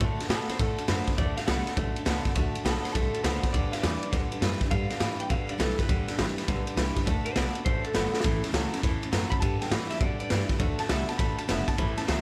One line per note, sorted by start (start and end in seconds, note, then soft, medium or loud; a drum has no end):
0.00 0.18 A2 medium
0.00 0.19 D3 medium
0.00 0.27 D3 medium
0.00 0.19 A3 medium
0.00 0.27 A3 medium
0.00 0.18 D4 medium
0.00 0.17 F#4 medium
0.00 0.15 A4 medium
0.00 kick loud
0.00 ride medium
0.16 0.28 D4 medium
0.16 0.29 F#4 medium
0.16 0.28 A4 medium
0.16 muted upright bass stroke medium
0.16 snare soft
0.16 ride medium
0.29 0.48 B2 loud
0.29 0.48 D3 medium
0.29 0.57 D3 medium
0.29 0.48 A3 medium
0.29 0.57 B3 medium
0.29 0.49 D4 medium
0.29 0.48 F#4 medium
0.29 0.47 A4 medium
0.29 0.49 A4 medium
0.29 snare loud
0.29 ride medium
0.48 0.58 D4 soft
0.48 0.59 F#4 medium
0.48 0.59 A4 medium
0.48 0.60 C5 medium
0.48 muted upright bass stroke medium
0.48 snare soft
0.48 ride medium
0.59 0.77 A2 medium
0.59 0.87 D3 medium
0.59 0.78 A3 medium
0.59 0.87 A3 medium
0.59 0.78 D4 medium
0.59 0.77 F#4 medium
0.59 0.88 A4 loud
0.59 0.75 A4 medium
0.59 kick loud
0.59 snare soft
0.59 ride medium
0.76 0.88 D4 soft
0.76 0.88 F#4 soft
0.76 0.88 A4 medium
0.76 muted upright bass stroke medium
0.76 ride medium
0.87 1.07 F#2 medium
0.87 1.07 D3 medium
0.87 1.16 D3 medium
0.87 1.07 A3 medium
0.87 1.16 B3 medium
0.87 1.08 D4 medium
0.87 1.07 F#4 medium
0.87 1.06 A4 medium
0.87 1.18 C5 medium
0.87 snare loud
0.87 ride loud
1.07 1.17 D4 soft
1.07 1.18 F#4 soft
1.07 1.18 A4 medium
1.07 muted upright bass stroke medium
1.07 kick medium
1.07 snare soft
1.07 ride medium
1.17 1.37 D2 medium
1.17 1.45 D3 medium
1.17 1.37 D3 medium
1.17 1.45 A3 loud
1.17 1.37 A3 medium
1.17 1.37 D4 medium
1.17 1.37 F#4 medium
1.17 1.36 A4 medium
1.17 1.37 D5 medium
1.17 kick loud
1.17 ride medium
1.37 1.46 D4 soft
1.37 1.47 F#4 soft
1.37 1.47 A4 medium
1.37 1.46 F5 medium
1.37 muted upright bass stroke medium
1.37 snare soft
1.37 ride medium
1.46 1.66 C2 medium
1.46 1.66 D3 medium
1.46 1.75 D3 medium
1.46 1.66 A3 medium
1.46 1.75 B3 medium
1.46 1.66 D4 medium
1.46 1.65 F#4 medium
1.46 1.64 A4 medium
1.46 1.76 F#5 medium
1.46 snare loud
1.46 ride medium
1.65 1.76 D4 soft
1.65 1.77 F#4 medium
1.65 1.76 A4 medium
1.65 muted upright bass stroke medium
1.65 snare soft
1.65 ride medium
1.77 1.95 B1 medium
1.77 2.04 D3 medium
1.77 1.96 A3 medium
1.77 2.04 A3 medium
1.77 1.96 D4 medium
1.77 1.96 F#4 medium
1.77 1.95 A4 medium
1.77 kick loud
1.77 ride medium
1.96 2.05 D4 medium
1.96 2.06 F#4 medium
1.96 2.06 A4 medium
1.96 muted upright bass stroke medium
1.96 ride medium
2.05 2.24 C#2 loud
2.05 2.25 D3 loud
2.05 2.33 D3 medium
2.05 2.25 A3 medium
2.05 2.34 B3 medium
2.05 2.25 D4 loud
2.05 2.25 F#4 medium
2.05 2.24 A4 loud
2.05 snare loud
2.05 ride medium
2.25 2.35 D4 soft
2.25 2.36 F#4 medium
2.25 2.36 A4 medium
2.25 muted upright bass stroke medium
2.25 kick medium
2.25 snare soft
2.25 ride medium
2.35 2.54 D2 medium
2.35 2.63 D3 medium
2.35 2.55 D3 medium
2.35 2.63 A3 medium
2.35 2.55 A3 medium
2.35 2.55 D4 medium
2.35 2.55 F#4 loud
2.35 2.53 A4 loud
2.35 kick loud
2.35 ride medium
2.55 2.64 D4 medium
2.55 2.65 F#4 medium
2.55 2.65 A4 medium
2.55 muted upright bass stroke medium
2.55 ride medium
2.64 2.83 B1 medium
2.64 2.84 D3 medium
2.64 2.92 D3 medium
2.64 2.84 A3 medium
2.64 2.93 B3 loud
2.64 2.84 D4 medium
2.64 2.85 F#4 medium
2.64 2.83 A4 medium
2.64 2.83 A4 loud
2.64 snare loud
2.64 ride medium
2.83 2.95 D4 soft
2.83 2.96 F#4 medium
2.83 2.95 A4 medium
2.83 2.92 C5 medium
2.83 muted upright bass stroke medium
2.83 snare soft
2.83 ride medium
2.92 3.13 C2 medium
2.92 3.22 D3 medium
2.92 3.13 A3 medium
2.92 3.22 A3 medium
2.92 3.14 D4 medium
2.92 3.22 A4 medium
2.92 kick loud
2.92 snare soft
2.92 ride medium
2.97 3.14 F#4 medium
2.97 3.13 A4 medium
3.14 3.24 D4 soft
3.14 3.24 F#4 soft
3.14 3.24 A4 medium
3.14 muted upright bass stroke medium
3.14 ride medium
3.23 3.42 C#2 medium
3.23 3.51 D3 medium
3.23 3.43 D3 medium
3.23 3.43 A3 medium
3.23 3.51 B3 medium
3.23 3.43 D4 medium
3.23 3.44 F#4 medium
3.23 3.43 A4 medium
3.23 3.52 C5 medium
3.23 snare loud
3.23 ride loud
3.43 3.54 D4 soft
3.43 3.54 F#4 soft
3.43 3.54 A4 medium
3.43 muted upright bass stroke medium
3.43 kick medium
3.43 snare soft
3.43 ride medium
3.53 3.71 D2 medium
3.53 3.81 G2 medium
3.53 3.81 D3 medium
3.53 3.73 G3 medium
3.53 3.73 D4 medium
3.53 3.73 G4 medium
3.53 3.71 B4 medium
3.53 3.72 D5 medium
3.53 kick loud
3.53 ride medium
3.72 3.83 D4 soft
3.72 3.83 G4 soft
3.72 3.83 B4 medium
3.72 3.82 F5 medium
3.72 muted upright bass stroke medium
3.72 snare soft
3.72 ride medium
3.82 4.02 E2 loud
3.82 4.10 G2 medium
3.82 4.10 E3 medium
3.82 4.02 G3 medium
3.82 4.02 D4 medium
3.82 4.02 G4 medium
3.82 4.01 B4 medium
3.82 4.11 D5 medium
3.82 snare loud
3.82 ride medium
4.03 4.12 D4 soft
4.03 4.13 G4 soft
4.03 4.13 B4 medium
4.03 muted upright bass stroke medium
4.03 ride medium
4.11 4.31 D2 medium
4.11 4.39 G2 medium
4.11 4.39 D3 loud
4.11 4.31 G3 medium
4.11 4.32 D4 medium
4.11 4.31 G4 medium
4.11 kick loud
4.11 snare soft
4.11 ride medium
4.15 4.30 B4 medium
4.31 4.42 D4 soft
4.31 4.42 G4 medium
4.31 4.42 B4 medium
4.31 muted upright bass stroke medium
4.31 ride medium
4.40 4.60 F#2 medium
4.40 4.68 G2 medium
4.40 4.69 E3 medium
4.40 4.61 G3 medium
4.40 4.61 D4 medium
4.40 4.62 G4 medium
4.40 4.61 B4 loud
4.40 snare loud
4.40 ride medium
4.61 4.70 D4 soft
4.61 4.71 G4 medium
4.61 4.71 B4 medium
4.61 muted upright bass stroke medium
4.61 kick medium
4.61 snare soft
4.61 ride medium
4.70 4.98 G2 medium
4.70 4.90 G2 medium
4.70 4.98 D3 loud
4.70 4.90 G3 medium
4.70 4.90 D4 medium
4.70 4.90 G4 medium
4.70 4.88 B4 medium
4.70 5.18 F5 loud
4.70 kick loud
4.70 ride medium
4.89 4.99 D4 soft
4.89 4.99 G4 medium
4.89 5.00 B4 medium
4.89 muted upright bass stroke medium
4.89 snare soft
4.89 ride medium
4.99 5.27 G2 medium
4.99 5.19 A2 medium
4.99 5.28 E3 loud
4.99 5.19 G3 medium
4.99 5.19 D4 medium
4.99 5.19 G4 medium
4.99 5.17 B4 medium
4.99 snare loud
4.99 ride medium
5.18 5.29 D4 soft
5.18 5.30 G4 soft
5.18 5.29 B4 medium
5.18 5.30 G5 medium
5.18 muted upright bass stroke medium
5.18 ride medium
5.29 5.57 G2 medium
5.29 5.48 B2 medium
5.29 5.57 D3 medium
5.29 5.49 G3 medium
5.29 5.49 D4 medium
5.29 5.48 G4 medium
5.29 5.46 B4 medium
5.29 5.49 F5 medium
5.29 kick loud
5.29 ride medium
5.47 5.57 D4 soft
5.47 5.58 G4 medium
5.47 5.58 B4 medium
5.47 5.60 D5 medium
5.47 muted upright bass stroke medium
5.47 ride medium
5.58 5.78 B1 loud
5.58 5.87 G2 medium
5.58 5.87 E3 loud
5.58 5.78 G3 medium
5.58 5.78 D4 medium
5.58 5.77 G4 medium
5.58 5.77 A4 medium
5.58 5.75 B4 medium
5.58 snare loud
5.58 ride medium
5.76 5.87 D4 soft
5.76 5.88 G4 medium
5.76 5.88 B4 medium
5.76 6.64 B4 loud
5.76 muted upright bass stroke medium
5.76 kick medium
5.76 snare soft
5.76 ride medium
5.88 6.07 D2 medium
5.88 6.16 G2 medium
5.88 6.16 D3 loud
5.88 6.07 G3 medium
5.88 6.08 D4 medium
5.88 6.08 G4 medium
5.88 6.06 B4 medium
5.88 kick loud
5.88 ride medium
6.08 6.18 D4 soft
6.08 6.18 G4 medium
6.08 6.18 B4 medium
6.08 muted upright bass stroke medium
6.08 snare soft
6.08 ride medium
6.18 6.36 A1 loud
6.18 6.46 G2 medium
6.18 6.46 E3 medium
6.18 6.37 G3 medium
6.18 6.38 D4 loud
6.18 6.37 G4 loud
6.18 6.35 B4 loud
6.18 snare loud
6.18 ride medium
6.36 6.47 D4 medium
6.36 6.47 G4 medium
6.36 6.47 B4 medium
6.36 muted upright bass stroke medium
6.36 snare soft
6.36 ride medium
6.47 6.66 B1 medium
6.47 6.75 G2 medium
6.47 6.75 D3 medium
6.47 6.66 G3 medium
6.47 6.67 D4 medium
6.47 6.66 G4 medium
6.47 6.64 B4 medium
6.47 kick loud
6.47 snare soft
6.47 ride medium
6.66 6.76 D4 soft
6.66 6.77 G4 medium
6.66 6.77 B4 medium
6.66 muted upright bass stroke medium
6.66 ride medium
6.76 6.95 C2 medium
6.76 7.04 G2 medium
6.76 7.04 E3 loud
6.76 6.96 G3 medium
6.76 6.96 D4 medium
6.76 6.95 G4 medium
6.76 6.94 B4 medium
6.76 snare loud
6.76 ride medium
6.96 7.06 D4 medium
6.96 7.07 G4 medium
6.96 7.06 B4 medium
6.96 muted upright bass stroke medium
6.96 kick medium
6.96 snare soft
6.96 ride medium
7.05 7.24 D2 loud
7.05 7.33 D3 medium
7.05 7.25 D3 medium
7.05 7.34 A3 loud
7.05 7.26 A3 medium
7.05 7.26 D4 loud
7.05 7.25 F#4 loud
7.05 7.23 A4 loud
7.05 kick loud
7.05 ride medium
7.24 7.35 D4 soft
7.24 7.36 F#4 medium
7.24 7.35 A4 medium
7.24 7.36 C5 medium
7.24 muted upright bass stroke medium
7.24 ride medium
7.35 7.54 B1 medium
7.35 7.63 D3 medium
7.35 7.55 D3 medium
7.35 7.55 A3 medium
7.35 7.63 B3 medium
7.35 7.55 D4 medium
7.35 7.55 F#4 medium
7.35 7.53 A4 medium
7.35 7.65 D5 medium
7.35 snare loud
7.35 ride medium
7.54 7.65 D4 soft
7.54 7.66 F#4 medium
7.54 7.65 A4 medium
7.54 muted upright bass stroke medium
7.54 ride medium
7.65 7.83 A1 medium
7.65 7.92 D3 medium
7.65 7.84 A3 medium
7.65 7.93 A3 medium
7.65 7.85 D4 medium
7.65 7.83 F#4 medium
7.65 7.82 A4 medium
7.65 7.84 C5 loud
7.65 kick loud
7.65 ride medium
7.83 7.93 D4 soft
7.83 7.94 F#4 soft
7.83 7.94 A4 medium
7.83 8.41 A4 loud
7.83 muted upright bass stroke medium
7.83 ride medium
7.93 8.12 G1 medium
7.93 8.13 D3 medium
7.93 8.22 D3 medium
7.93 8.13 A3 medium
7.93 8.22 B3 medium
7.93 8.13 D4 medium
7.93 8.11 F#4 medium
7.93 8.11 A4 medium
7.93 snare loud
7.93 ride medium
8.12 8.24 D4 soft
8.12 8.24 F#4 soft
8.12 8.23 A4 medium
8.12 muted upright bass stroke medium
8.12 snare medium
8.20 8.43 A1 medium
8.20 8.43 A2 medium
8.20 8.52 A2 medium
8.20 8.43 E3 loud
8.20 8.52 E3 loud
8.20 8.43 A3 loud
8.20 8.42 C#4 medium
8.20 8.42 E4 medium
8.20 snare medium
8.20 ride medium
8.24 8.40 A4 loud
8.24 kick loud
8.41 8.51 A3 medium
8.41 8.52 C#4 medium
8.41 8.52 E4 medium
8.41 8.52 A4 medium
8.41 muted upright bass stroke medium
8.41 snare soft
8.41 ride medium
8.52 8.72 C#2 medium
8.52 8.72 A2 medium
8.52 8.81 A2 medium
8.52 8.72 E3 medium
8.52 8.81 F#3 medium
8.52 8.72 A3 medium
8.52 8.72 C#4 medium
8.52 8.71 E4 loud
8.52 8.70 A4 loud
8.52 snare loud
8.52 ride loud
8.71 8.79 A3 medium
8.71 8.81 C#4 medium
8.71 8.82 E4 medium
8.71 8.82 A4 medium
8.71 muted upright bass stroke medium
8.71 snare soft
8.71 ride medium
8.81 9.01 E2 medium
8.81 9.10 A2 medium
8.81 9.11 E3 medium
8.81 9.01 A3 medium
8.81 9.02 C#4 medium
8.81 9.01 E4 medium
8.81 9.00 A4 medium
8.81 kick loud
8.81 snare soft
8.81 ride medium
9.01 9.11 A3 medium
9.01 9.12 C#4 medium
9.01 9.12 E4 medium
9.01 9.12 A4 medium
9.01 muted upright bass stroke medium
9.01 ride medium
9.11 9.31 F#2 medium
9.11 9.39 A2 medium
9.11 9.31 A2 medium
9.11 9.32 E3 medium
9.11 9.40 F#3 medium
9.11 9.32 A3 medium
9.11 9.32 C#4 medium
9.11 9.31 E4 loud
9.11 9.30 A4 loud
9.11 snare loud
9.11 ride loud
9.30 9.40 A3 soft
9.30 9.41 C#4 soft
9.30 9.42 E4 soft
9.30 9.42 A4 medium
9.30 9.40 B5 loud
9.30 kick medium
9.30 ride medium
9.40 9.69 G2 medium
9.40 9.60 G2 medium
9.40 9.69 D3 loud
9.40 9.61 G3 medium
9.40 9.61 D4 medium
9.40 9.60 G4 loud
9.40 9.58 B4 medium
9.40 9.61 A5 loud
9.40 kick loud
9.40 ride medium
9.59 9.69 D4 soft
9.59 9.70 G4 soft
9.59 9.70 B4 medium
9.59 9.71 G5 medium
9.59 muted upright bass stroke medium
9.59 snare soft
9.59 ride medium
9.70 9.98 G2 medium
9.70 9.89 A2 medium
9.70 9.99 E3 medium
9.70 9.90 G3 medium
9.70 9.90 D4 medium
9.70 9.89 G4 medium
9.70 9.88 B4 medium
9.70 9.90 F#5 medium
9.70 snare loud
9.70 ride loud
9.89 9.99 D4 soft
9.89 10.00 G4 medium
9.89 10.00 B4 medium
9.89 10.00 E5 loud
9.89 muted upright bass stroke medium
9.89 snare soft
9.89 ride medium
9.99 10.28 G2 medium
9.99 10.19 B2 medium
9.99 10.29 D3 medium
9.99 10.19 G3 medium
9.99 10.20 D4 medium
9.99 10.20 G4 medium
9.99 10.18 B4 medium
9.99 10.19 D5 medium
9.99 kick loud
9.99 ride medium
10.19 10.30 D4 soft
10.19 10.30 G4 soft
10.19 10.30 B4 medium
10.19 10.49 D5 medium
10.19 muted upright bass stroke medium
10.19 ride medium
10.30 10.58 G2 medium
10.30 10.49 G2 loud
10.30 10.58 E3 medium
10.30 10.50 G3 medium
10.30 10.49 D4 medium
10.30 10.49 G4 medium
10.30 10.47 B4 medium
10.30 snare loud
10.30 ride medium
10.48 10.59 D4 soft
10.48 10.60 G4 soft
10.48 10.59 B4 medium
10.48 muted upright bass stroke medium
10.48 kick medium
10.48 snare soft
10.48 ride medium
10.58 10.79 D2 medium
10.58 10.78 D3 medium
10.58 10.87 D3 medium
10.58 10.79 A3 medium
10.58 10.87 A3 loud
10.58 10.79 D4 loud
10.58 10.78 F#4 medium
10.58 10.77 A4 loud
10.58 kick loud
10.58 ride medium
10.78 10.89 D4 soft
10.78 10.89 F#4 medium
10.78 10.89 A4 medium
10.78 10.90 A5 loud
10.78 muted upright bass stroke medium
10.78 snare soft
10.78 ride medium
10.89 11.08 C2 medium
10.89 11.08 D3 medium
10.89 11.17 D3 medium
10.89 11.09 A3 medium
10.89 11.17 B3 loud
10.89 11.08 D4 medium
10.89 11.07 F#4 medium
10.89 11.06 A4 medium
10.89 11.08 E5 medium
10.89 snare loud
10.89 ride loud
11.07 11.17 D4 soft
11.07 11.17 F#4 medium
11.07 11.18 A4 medium
11.07 11.17 A5 medium
11.07 muted upright bass stroke medium
11.07 snare soft
11.07 ride medium
11.16 11.37 A1 medium
11.16 11.46 D3 medium
11.16 11.37 A3 medium
11.16 11.47 A3 medium
11.16 11.38 D4 medium
11.16 11.37 F#4 medium
11.16 11.35 A4 medium
11.16 11.37 B5 loud
11.16 kick loud
11.16 snare soft
11.16 ride medium
11.37 11.47 D4 soft
11.37 11.47 F#4 medium
11.37 11.48 A4 medium
11.37 11.49 A5 loud
11.37 muted upright bass stroke medium
11.37 ride medium
11.48 11.67 F#1 loud
11.48 11.67 D3 medium
11.48 11.76 D3 medium
11.48 11.68 A3 medium
11.48 11.76 B3 loud
11.48 11.68 D4 medium
11.48 11.67 F#4 medium
11.48 11.65 A4 medium
11.48 11.67 E5 medium
11.48 snare loud
11.48 ride loud
11.67 11.78 D4 soft
11.67 11.78 F#4 medium
11.67 11.78 A4 medium
11.67 11.79 A5 loud
11.67 muted upright bass stroke medium
11.67 kick medium
11.67 snare soft
11.67 ride medium
11.77 11.97 A1 medium
11.77 11.97 A2 medium
11.77 12.05 A2 medium
11.77 11.97 E3 medium
11.77 12.06 E3 loud
11.77 11.97 A3 medium
11.77 11.97 C#4 medium
11.77 11.96 E4 medium
11.77 11.95 A4 medium
11.77 11.97 B5 loud
11.77 kick loud
11.77 ride medium
11.96 12.07 A3 soft
11.96 12.08 C#4 soft
11.96 12.08 E4 medium
11.96 12.07 A4 medium
11.96 12.08 A5 loud
11.96 muted upright bass stroke medium
11.96 snare soft
11.96 ride medium
12.06 12.21 C#2 medium
12.06 12.21 A2 medium
12.06 12.21 E3 medium
12.06 12.21 F#3 loud
12.06 12.21 A3 medium
12.06 12.21 C#4 medium
12.06 12.21 E4 medium
12.06 12.21 A4 medium
12.06 12.21 E5 medium
12.06 snare loud
12.06 ride medium